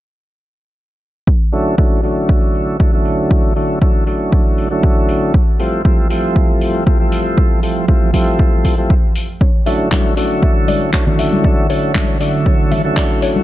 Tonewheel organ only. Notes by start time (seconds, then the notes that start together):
1.52 D3 F#3 A3 C#4 E4
1.78 D3 F#3 A3 C#4 E4
2.03 D3 F#3 A3 C#4 E4
2.79 D3 F#3 A3 C#4 E4
2.92 D3 F#3 A3 C#4 E4
3.56 D3 F#3 A3 C#4 E4
3.81 D3 F#3 A3 C#4 E4
4.06 D3 F#3 A3 C#4 E4
4.70 D3 F#3 A3 C#4 E4
5.59 F3 G3 A3 C4 E4
5.84 F3 G3 A3 C4 E4
6.09 F3 G3 A3 C4 E4
6.86 F3 G3 A3 C4 E4
6.99 F3 G3 A3 C4 E4
7.63 F3 G3 A3 C4 E4
7.88 F3 G3 A3 C4 E4
8.13 F3 G3 A3 C4 E4
8.78 F3 G3 A3 C4 E4
9.66 D3 F#3 A3 C#4 E4
9.91 D3 F#3 A3 C#4 E4
10.16 D3 F#3 A3 C#4 E4
10.93 D3 F#3 A3 C#4 E4
11.06 D3 F#3 A3 C#4 E4
11.69 D3 F#3 A3 C#4 E4
11.95 D3 F#3 A3 C#4 E4
12.20 D3 F#3 A3 C#4 E4
12.84 D3 F#3 A3 C#4 E4